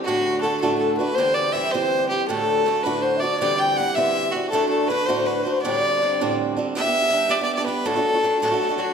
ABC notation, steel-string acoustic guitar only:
X:1
M:6/8
L:1/16
Q:3/8=108
K:Dmix
V:1 name="Steel-string acoustic guitar"
[D,,A,,D,A,DF]4 [D,A,DF]2 [D,,A,,D,A,DF]4 [D,A,DF]2 | [D,,D,E,G,CG]4 [E,G,CG]2 [D,,D,E,G,CG]4 [E,G,CG]2 | [D,,A,,D,A,DF]4 [D,A,DF]2 [D,,A,,D,A,DF]4 [D,A,DF]2 | [D,,D,E,G,CG]4 [E,G,CG]2 [D,,D,E,G,CG]4 [E,G,CG]2 |
[D,,A,,D,A,DF]4 [D,A,DF]2 [D,,A,,D,A,DF]4 [D,A,DF]2 | [D,,A,,D,G,CD]4 [D,G,CD]2 [D,,A,,D,G,CD]4 [D,G,CD]2 | [G,B,DG] [B,DG]2 [B,DG] [G,B,DG]2 [G,B,DG] [B,DG]2 [B,DG] [G,B,DG]2 | [D,,A,,F,A,DF] [F,A,DF]2 [F,A,DF] [F,A,DF]2 [D,,A,,F,A,DF] [F,A,DF]2 [F,A,DF] [F,A,DF]2 |]